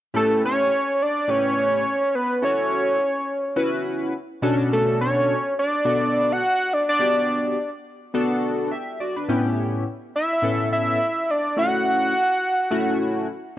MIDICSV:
0, 0, Header, 1, 3, 480
1, 0, Start_track
1, 0, Key_signature, 2, "minor"
1, 0, Tempo, 571429
1, 122, Time_signature, 4, 2, 24, 8
1, 11410, End_track
2, 0, Start_track
2, 0, Title_t, "Analog synth lead"
2, 0, Program_c, 0, 81
2, 135, Note_on_c, 0, 69, 94
2, 352, Note_off_c, 0, 69, 0
2, 381, Note_on_c, 0, 73, 112
2, 859, Note_on_c, 0, 74, 99
2, 872, Note_off_c, 0, 73, 0
2, 1092, Note_on_c, 0, 73, 110
2, 1105, Note_off_c, 0, 74, 0
2, 1806, Note_on_c, 0, 71, 93
2, 1818, Note_off_c, 0, 73, 0
2, 2044, Note_off_c, 0, 71, 0
2, 2053, Note_on_c, 0, 73, 98
2, 3454, Note_off_c, 0, 73, 0
2, 3971, Note_on_c, 0, 69, 87
2, 4190, Note_off_c, 0, 69, 0
2, 4209, Note_on_c, 0, 73, 98
2, 4653, Note_off_c, 0, 73, 0
2, 4695, Note_on_c, 0, 74, 98
2, 5311, Note_on_c, 0, 78, 118
2, 5323, Note_off_c, 0, 74, 0
2, 5655, Note_on_c, 0, 74, 100
2, 5668, Note_off_c, 0, 78, 0
2, 5783, Note_off_c, 0, 74, 0
2, 5787, Note_on_c, 0, 74, 100
2, 6468, Note_off_c, 0, 74, 0
2, 8531, Note_on_c, 0, 76, 89
2, 8973, Note_off_c, 0, 76, 0
2, 9009, Note_on_c, 0, 76, 100
2, 9497, Note_on_c, 0, 74, 90
2, 9509, Note_off_c, 0, 76, 0
2, 9729, Note_off_c, 0, 74, 0
2, 9735, Note_on_c, 0, 78, 115
2, 11375, Note_off_c, 0, 78, 0
2, 11410, End_track
3, 0, Start_track
3, 0, Title_t, "Analog polysynth"
3, 0, Program_c, 1, 90
3, 116, Note_on_c, 1, 61, 61
3, 118, Note_on_c, 1, 45, 75
3, 120, Note_on_c, 1, 64, 62
3, 121, Note_on_c, 1, 67, 67
3, 123, Note_on_c, 1, 71, 78
3, 589, Note_off_c, 1, 61, 0
3, 590, Note_off_c, 1, 45, 0
3, 591, Note_off_c, 1, 64, 0
3, 592, Note_off_c, 1, 67, 0
3, 592, Note_off_c, 1, 71, 0
3, 1075, Note_on_c, 1, 45, 75
3, 1077, Note_on_c, 1, 61, 73
3, 1079, Note_on_c, 1, 64, 65
3, 1081, Note_on_c, 1, 71, 84
3, 1082, Note_on_c, 1, 67, 69
3, 1548, Note_off_c, 1, 45, 0
3, 1549, Note_off_c, 1, 61, 0
3, 1550, Note_off_c, 1, 64, 0
3, 1552, Note_off_c, 1, 67, 0
3, 1552, Note_off_c, 1, 71, 0
3, 2033, Note_on_c, 1, 61, 72
3, 2037, Note_on_c, 1, 64, 64
3, 2038, Note_on_c, 1, 66, 68
3, 2042, Note_on_c, 1, 69, 81
3, 2507, Note_off_c, 1, 61, 0
3, 2509, Note_off_c, 1, 64, 0
3, 2510, Note_off_c, 1, 66, 0
3, 2512, Note_off_c, 1, 69, 0
3, 2991, Note_on_c, 1, 61, 92
3, 2993, Note_on_c, 1, 66, 83
3, 2994, Note_on_c, 1, 64, 85
3, 2997, Note_on_c, 1, 71, 102
3, 3466, Note_off_c, 1, 61, 0
3, 3468, Note_off_c, 1, 64, 0
3, 3468, Note_off_c, 1, 66, 0
3, 3469, Note_off_c, 1, 71, 0
3, 3715, Note_on_c, 1, 47, 88
3, 3716, Note_on_c, 1, 61, 92
3, 3720, Note_on_c, 1, 62, 90
3, 3721, Note_on_c, 1, 66, 88
3, 3723, Note_on_c, 1, 69, 103
3, 4492, Note_off_c, 1, 47, 0
3, 4493, Note_off_c, 1, 61, 0
3, 4495, Note_off_c, 1, 62, 0
3, 4496, Note_off_c, 1, 66, 0
3, 4496, Note_off_c, 1, 69, 0
3, 4913, Note_on_c, 1, 47, 78
3, 4915, Note_on_c, 1, 59, 74
3, 4917, Note_on_c, 1, 62, 66
3, 4918, Note_on_c, 1, 66, 73
3, 4918, Note_on_c, 1, 69, 80
3, 5388, Note_off_c, 1, 47, 0
3, 5388, Note_off_c, 1, 59, 0
3, 5389, Note_off_c, 1, 62, 0
3, 5390, Note_off_c, 1, 66, 0
3, 5390, Note_off_c, 1, 69, 0
3, 5876, Note_on_c, 1, 59, 75
3, 5880, Note_on_c, 1, 62, 68
3, 5881, Note_on_c, 1, 66, 62
3, 5884, Note_on_c, 1, 67, 83
3, 6349, Note_off_c, 1, 59, 0
3, 6351, Note_off_c, 1, 62, 0
3, 6352, Note_off_c, 1, 66, 0
3, 6353, Note_off_c, 1, 67, 0
3, 6837, Note_on_c, 1, 59, 90
3, 6842, Note_on_c, 1, 62, 88
3, 6843, Note_on_c, 1, 66, 86
3, 6844, Note_on_c, 1, 69, 102
3, 7310, Note_off_c, 1, 59, 0
3, 7312, Note_off_c, 1, 62, 0
3, 7312, Note_off_c, 1, 66, 0
3, 7313, Note_off_c, 1, 69, 0
3, 7320, Note_on_c, 1, 76, 63
3, 7325, Note_on_c, 1, 67, 52
3, 7549, Note_off_c, 1, 76, 0
3, 7552, Note_off_c, 1, 67, 0
3, 7562, Note_on_c, 1, 74, 71
3, 7569, Note_on_c, 1, 66, 67
3, 7690, Note_off_c, 1, 74, 0
3, 7693, Note_off_c, 1, 66, 0
3, 7698, Note_on_c, 1, 71, 69
3, 7701, Note_on_c, 1, 62, 60
3, 7799, Note_on_c, 1, 45, 81
3, 7802, Note_on_c, 1, 59, 81
3, 7803, Note_on_c, 1, 61, 79
3, 7806, Note_on_c, 1, 64, 77
3, 7806, Note_on_c, 1, 67, 96
3, 7925, Note_off_c, 1, 71, 0
3, 7927, Note_off_c, 1, 62, 0
3, 8271, Note_off_c, 1, 45, 0
3, 8272, Note_off_c, 1, 59, 0
3, 8272, Note_off_c, 1, 61, 0
3, 8274, Note_off_c, 1, 64, 0
3, 8274, Note_off_c, 1, 67, 0
3, 8755, Note_on_c, 1, 45, 79
3, 8757, Note_on_c, 1, 59, 67
3, 8758, Note_on_c, 1, 61, 75
3, 8759, Note_on_c, 1, 64, 70
3, 8762, Note_on_c, 1, 69, 88
3, 9228, Note_off_c, 1, 45, 0
3, 9230, Note_off_c, 1, 59, 0
3, 9230, Note_off_c, 1, 61, 0
3, 9231, Note_off_c, 1, 64, 0
3, 9232, Note_off_c, 1, 69, 0
3, 9716, Note_on_c, 1, 57, 73
3, 9718, Note_on_c, 1, 61, 65
3, 9720, Note_on_c, 1, 64, 68
3, 9723, Note_on_c, 1, 66, 78
3, 10189, Note_off_c, 1, 57, 0
3, 10190, Note_off_c, 1, 61, 0
3, 10191, Note_off_c, 1, 64, 0
3, 10193, Note_off_c, 1, 66, 0
3, 10674, Note_on_c, 1, 57, 96
3, 10678, Note_on_c, 1, 61, 82
3, 10678, Note_on_c, 1, 64, 80
3, 10679, Note_on_c, 1, 66, 108
3, 11148, Note_off_c, 1, 57, 0
3, 11150, Note_off_c, 1, 61, 0
3, 11150, Note_off_c, 1, 64, 0
3, 11150, Note_off_c, 1, 66, 0
3, 11410, End_track
0, 0, End_of_file